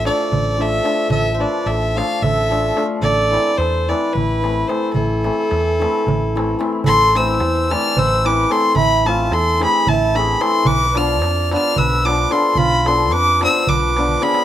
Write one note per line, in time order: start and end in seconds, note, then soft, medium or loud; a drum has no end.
0.04 0.56 F3 medium
0.04 0.22 A3 medium
0.04 0.23 D4 medium
0.04 0.23 F4 medium
0.04 0.56 A4 medium
0.04 0.62 D5 medium
0.04 darbuka tek medium
0.32 0.79 A1 medium
0.32 darbuka dum medium
0.58 0.82 F3 medium
0.58 0.76 A3 soft
0.58 0.76 D4 medium
0.58 0.77 F4 medium
0.58 1.08 A4 medium
0.58 1.11 E5 loud
0.58 darbuka tek medium
0.83 1.37 F3 medium
0.83 1.01 A3 medium
0.83 1.02 D4 medium
0.83 1.02 F4 medium
0.83 darbuka tek medium
1.10 1.44 A1 medium
1.10 1.31 A4 medium
1.10 1.34 E5 loud
1.10 darbuka dum medium
1.33 1.41 C5 medium
1.33 1.42 E5 medium
1.39 1.94 F3 medium
1.39 1.57 A3 medium
1.39 1.58 D4 medium
1.39 1.58 F4 medium
1.39 1.66 B4 medium
1.39 1.69 D5 medium
1.66 2.00 A1 medium
1.66 1.98 A4 medium
1.66 1.98 E5 medium
1.66 darbuka tek medium
1.82 darbuka tek soft
1.95 2.49 F3 medium
1.95 2.14 A3 medium
1.95 2.14 D4 medium
1.95 2.14 F4 medium
1.95 2.23 D5 medium
1.95 2.24 F5 loud
1.95 darbuka tek medium
2.22 2.70 A1 medium
2.22 2.83 A4 medium
2.22 2.83 E5 loud
2.22 darbuka dum medium
2.50 2.75 F3 medium
2.50 2.68 A3 medium
2.50 2.69 D4 medium
2.50 2.69 F4 medium
2.50 darbuka tek medium
2.76 3.08 F3 medium
2.76 2.93 A3 medium
2.76 2.94 D4 medium
2.76 2.94 F4 medium
2.76 darbuka tek medium
3.02 3.36 A1 loud
3.02 3.55 A4 medium
3.02 3.59 D5 loud
3.02 darbuka dum medium
3.31 3.87 E3 medium
3.31 3.50 A3 medium
3.31 3.50 C4 medium
3.31 3.50 E4 medium
3.31 darbuka tek medium
3.58 3.92 E2 medium
3.58 3.90 A4 medium
3.58 3.90 C5 loud
3.58 darbuka tek medium
3.74 darbuka tek soft
3.88 4.41 E3 medium
3.88 4.06 A3 medium
3.88 4.07 C4 medium
3.88 4.07 E4 medium
3.88 4.16 B4 medium
3.88 4.15 D5 medium
3.88 darbuka tek medium
4.13 4.63 A1 medium
4.13 4.70 E4 medium
4.13 4.69 B4 medium
4.13 darbuka dum medium
4.42 4.67 E3 medium
4.42 4.60 A3 medium
4.42 4.61 C4 medium
4.42 4.61 E4 medium
4.42 darbuka tek medium
4.68 5.23 E3 medium
4.68 4.86 A3 medium
4.68 4.86 C4 medium
4.68 4.86 E4 medium
4.68 4.95 A4 medium
4.68 4.93 C5 medium
4.68 darbuka tek medium
4.93 5.29 A1 medium
4.93 6.57 E4 medium
4.93 6.56 A4 loud
4.93 darbuka dum medium
5.11 darbuka tek soft
5.24 5.78 E3 medium
5.24 5.42 A3 medium
5.24 5.42 C4 medium
5.24 5.42 E4 medium
5.24 darbuka tek medium
5.51 5.85 E2 medium
5.51 darbuka tek medium
5.79 6.34 E3 medium
5.79 5.98 A3 medium
5.79 5.98 C4 medium
5.79 5.98 E4 medium
5.79 darbuka tek medium
5.96 darbuka tek soft
6.07 6.54 A1 medium
6.07 darbuka dum loud
6.23 darbuka tek soft
6.35 6.57 E3 medium
6.35 6.52 A3 medium
6.35 6.52 C4 medium
6.35 6.53 E4 medium
6.35 darbuka tek medium
6.59 6.90 E3 medium
6.59 6.77 A3 medium
6.59 6.77 C4 medium
6.59 6.77 E4 medium
6.59 darbuka tek medium
6.73 darbuka tek soft
6.84 7.41 A1 medium
6.84 7.14 A4 loud
6.84 7.18 C6 loud
6.84 darbuka dum medium
7.15 7.69 E3 medium
7.15 7.33 A3 medium
7.15 7.33 C4 medium
7.15 7.33 E4 medium
7.15 7.73 C5 medium
7.15 7.73 E6 medium
7.15 darbuka tek medium
7.40 7.74 E2 loud
7.40 darbuka tek medium
7.70 8.24 E3 medium
7.70 7.88 A3 medium
7.70 7.89 C4 medium
7.70 7.89 E4 medium
7.70 7.98 D5 medium
7.70 8.00 F6 loud
7.70 darbuka tek medium
7.97 8.44 A1 loud
7.97 8.25 C5 loud
7.97 8.27 E6 loud
7.97 darbuka dum medium
8.25 8.48 E3 medium
8.25 8.42 A3 medium
8.25 8.42 C4 medium
8.25 8.43 E4 medium
8.25 8.50 B4 medium
8.25 8.53 D6 loud
8.25 darbuka tek medium
8.49 9.04 E3 medium
8.49 8.67 A3 medium
8.49 8.67 C4 medium
8.49 8.68 E4 medium
8.49 8.76 A4 medium
8.49 8.76 C6 loud
8.49 darbuka tek medium
8.76 9.31 A1 medium
8.76 9.04 E4 loud
8.76 9.08 B5 loud
8.76 darbuka dum loud
8.91 darbuka tek soft
9.05 9.59 E3 medium
9.05 9.23 A3 medium
9.05 9.23 C4 medium
9.05 9.23 E4 medium
9.05 9.32 F4 medium
9.05 9.35 A5 medium
9.05 darbuka tek medium
9.31 9.65 E2 loud
9.31 9.62 A4 medium
9.31 9.62 C6 loud
9.31 darbuka tek medium
9.60 10.14 E3 medium
9.60 9.78 A3 medium
9.60 9.79 C4 medium
9.60 9.79 E4 medium
9.60 9.86 G#4 medium
9.60 darbuka tek medium
9.65 9.90 B5 loud
9.87 10.34 A1 loud
9.87 10.16 E4 loud
9.87 10.18 A5 loud
9.87 darbuka dum medium
10.15 10.39 E3 medium
10.15 10.32 A3 medium
10.15 10.33 C4 medium
10.15 10.33 E4 medium
10.15 10.41 G#4 medium
10.15 10.43 B5 loud
10.15 darbuka tek medium
10.29 darbuka tek soft
10.40 10.71 E3 medium
10.40 10.57 A3 medium
10.40 10.58 C4 medium
10.40 10.58 E4 medium
10.40 10.66 A4 medium
10.40 10.68 C6 loud
10.40 darbuka tek medium
10.65 11.21 B1 medium
10.65 10.96 B4 medium
10.65 10.99 D6 loud
10.65 darbuka dum loud
10.81 darbuka tek soft
10.94 11.50 F3 medium
10.94 11.13 B3 medium
10.94 11.13 D4 medium
10.94 11.14 F4 medium
10.94 11.50 D5 medium
10.94 11.53 F6 medium
10.94 darbuka tek medium
11.21 11.55 F2 loud
11.21 darbuka tek medium
11.51 12.04 F3 medium
11.51 11.69 B3 medium
11.51 11.70 D4 medium
11.51 11.70 F4 medium
11.51 11.76 D5 medium
11.51 11.80 F6 loud
11.51 darbuka tek medium
11.76 12.25 B1 loud
11.76 12.04 B4 loud
11.76 12.07 E6 loud
11.76 darbuka dum medium
11.92 darbuka tek soft
12.05 12.29 F3 medium
12.05 12.23 B3 medium
12.05 12.23 D4 medium
12.05 12.23 F4 medium
12.05 12.31 B4 medium
12.05 12.34 D6 loud
12.05 darbuka tek medium
12.30 12.85 F3 medium
12.30 12.48 B3 medium
12.30 12.48 D4 medium
12.30 12.48 F4 medium
12.30 12.56 A4 medium
12.30 12.59 C6 loud
12.30 darbuka tek medium
12.55 13.12 B1 medium
12.55 12.86 F4 loud
12.55 12.89 B5 loud
12.55 darbuka dum medium
12.86 13.40 F3 medium
12.86 13.04 B3 medium
12.86 13.04 D4 medium
12.86 13.04 F4 medium
12.86 13.12 A4 medium
12.86 13.14 C6 medium
12.86 darbuka tek medium
13.11 13.45 F2 loud
13.11 13.43 B4 medium
13.11 13.42 D6 loud
13.11 darbuka tek medium
13.41 13.96 F3 medium
13.41 13.59 B3 medium
13.41 13.60 D4 medium
13.41 13.60 F4 medium
13.41 13.67 C5 medium
13.41 13.70 E6 loud
13.41 darbuka tek medium
13.55 darbuka tek soft
13.67 14.15 B1 medium
13.67 14.22 B4 medium
13.67 14.24 D6 loud
13.67 darbuka dum medium
13.83 darbuka tek soft
13.96 14.20 F3 medium
13.96 14.14 B3 medium
13.96 14.14 D4 medium
13.96 14.14 F4 medium
13.96 darbuka tek medium
14.09 darbuka dum medium
14.21 14.45 F3 medium
14.21 14.38 B3 medium
14.21 14.39 D4 medium
14.21 14.39 F4 medium
14.21 14.45 G#4 medium
14.21 14.45 B5 loud
14.21 darbuka tek medium
14.34 darbuka tek medium